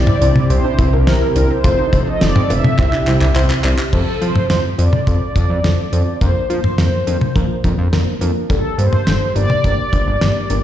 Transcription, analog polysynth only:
0, 0, Header, 1, 2, 480
1, 0, Start_track
1, 0, Key_signature, -1, "major"
1, 0, Tempo, 571429
1, 1380, Time_signature, 4, 2, 24, 8
1, 8933, End_track
2, 0, Start_track
2, 0, Title_t, "Analog polysynth"
2, 0, Program_c, 0, 90
2, 0, Note_on_c, 0, 74, 98
2, 418, Note_on_c, 0, 72, 101
2, 434, Note_off_c, 0, 74, 0
2, 780, Note_on_c, 0, 70, 92
2, 790, Note_off_c, 0, 72, 0
2, 1129, Note_off_c, 0, 70, 0
2, 1139, Note_on_c, 0, 70, 92
2, 1259, Note_on_c, 0, 72, 96
2, 1263, Note_off_c, 0, 70, 0
2, 1739, Note_on_c, 0, 75, 103
2, 1754, Note_off_c, 0, 72, 0
2, 1860, Note_on_c, 0, 74, 106
2, 1863, Note_off_c, 0, 75, 0
2, 2101, Note_on_c, 0, 76, 116
2, 2107, Note_off_c, 0, 74, 0
2, 3027, Note_off_c, 0, 76, 0
2, 3302, Note_on_c, 0, 69, 98
2, 3543, Note_on_c, 0, 72, 100
2, 3548, Note_off_c, 0, 69, 0
2, 3771, Note_off_c, 0, 72, 0
2, 3781, Note_on_c, 0, 72, 101
2, 3889, Note_off_c, 0, 72, 0
2, 4020, Note_on_c, 0, 74, 123
2, 5186, Note_off_c, 0, 74, 0
2, 5217, Note_on_c, 0, 72, 104
2, 5448, Note_off_c, 0, 72, 0
2, 5459, Note_on_c, 0, 72, 102
2, 6866, Note_off_c, 0, 72, 0
2, 7141, Note_on_c, 0, 69, 99
2, 7364, Note_off_c, 0, 69, 0
2, 7383, Note_on_c, 0, 72, 108
2, 7828, Note_off_c, 0, 72, 0
2, 7861, Note_on_c, 0, 74, 127
2, 8933, Note_off_c, 0, 74, 0
2, 8933, End_track
0, 0, End_of_file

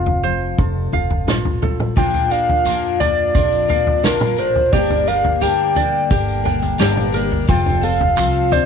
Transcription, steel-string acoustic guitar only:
0, 0, Header, 1, 2, 480
1, 0, Start_track
1, 0, Key_signature, -2, "major"
1, 0, Tempo, 690449
1, 1367, Time_signature, 4, 2, 24, 8
1, 6018, End_track
2, 0, Start_track
2, 0, Title_t, "Steel-string acoustic guitar"
2, 0, Program_c, 0, 25
2, 0, Note_on_c, 0, 41, 61
2, 0, Note_on_c, 0, 53, 52
2, 0, Note_on_c, 0, 60, 49
2, 0, Note_on_c, 0, 65, 55
2, 155, Note_off_c, 0, 53, 0
2, 163, Note_on_c, 0, 53, 55
2, 408, Note_on_c, 0, 69, 57
2, 637, Note_off_c, 0, 65, 0
2, 645, Note_on_c, 0, 65, 44
2, 881, Note_off_c, 0, 41, 0
2, 883, Note_on_c, 0, 43, 50
2, 1124, Note_off_c, 0, 43, 0
2, 1127, Note_on_c, 0, 45, 51
2, 1338, Note_off_c, 0, 65, 0
2, 1340, Note_off_c, 0, 60, 0
2, 1340, Note_off_c, 0, 69, 0
2, 1360, Note_off_c, 0, 53, 0
2, 1362, Note_on_c, 0, 46, 64
2, 1367, Note_off_c, 0, 45, 0
2, 1368, Note_on_c, 0, 53, 51
2, 1374, Note_on_c, 0, 62, 53
2, 1378, Note_on_c, 0, 65, 60
2, 1607, Note_off_c, 0, 62, 0
2, 1610, Note_on_c, 0, 62, 50
2, 1837, Note_off_c, 0, 53, 0
2, 1846, Note_on_c, 0, 53, 55
2, 2083, Note_off_c, 0, 65, 0
2, 2091, Note_on_c, 0, 65, 57
2, 2325, Note_off_c, 0, 46, 0
2, 2330, Note_on_c, 0, 41, 59
2, 2809, Note_on_c, 0, 46, 54
2, 3048, Note_off_c, 0, 46, 0
2, 3049, Note_off_c, 0, 41, 0
2, 3054, Note_on_c, 0, 45, 53
2, 3260, Note_off_c, 0, 62, 0
2, 3260, Note_off_c, 0, 65, 0
2, 3286, Note_off_c, 0, 53, 0
2, 3290, Note_off_c, 0, 45, 0
2, 3296, Note_on_c, 0, 43, 64
2, 3301, Note_on_c, 0, 55, 54
2, 3307, Note_on_c, 0, 58, 52
2, 3312, Note_on_c, 0, 62, 52
2, 3315, Note_on_c, 0, 67, 64
2, 3529, Note_off_c, 0, 58, 0
2, 3537, Note_on_c, 0, 58, 53
2, 3766, Note_off_c, 0, 55, 0
2, 3775, Note_on_c, 0, 55, 61
2, 4007, Note_off_c, 0, 62, 0
2, 4016, Note_on_c, 0, 62, 55
2, 4246, Note_on_c, 0, 50, 57
2, 4718, Note_off_c, 0, 55, 0
2, 4726, Note_on_c, 0, 55, 60
2, 4959, Note_off_c, 0, 58, 0
2, 4967, Note_on_c, 0, 58, 54
2, 5176, Note_off_c, 0, 50, 0
2, 5177, Note_off_c, 0, 55, 0
2, 5181, Note_off_c, 0, 43, 0
2, 5190, Note_off_c, 0, 67, 0
2, 5203, Note_on_c, 0, 41, 68
2, 5206, Note_off_c, 0, 58, 0
2, 5210, Note_off_c, 0, 62, 0
2, 5210, Note_on_c, 0, 53, 58
2, 5213, Note_on_c, 0, 60, 57
2, 5219, Note_on_c, 0, 65, 63
2, 5444, Note_off_c, 0, 60, 0
2, 5452, Note_on_c, 0, 60, 51
2, 5682, Note_off_c, 0, 53, 0
2, 5690, Note_on_c, 0, 53, 63
2, 5922, Note_off_c, 0, 65, 0
2, 5925, Note_on_c, 0, 62, 65
2, 6018, Note_off_c, 0, 41, 0
2, 6018, Note_off_c, 0, 53, 0
2, 6018, Note_off_c, 0, 60, 0
2, 6018, Note_off_c, 0, 62, 0
2, 6018, End_track
0, 0, End_of_file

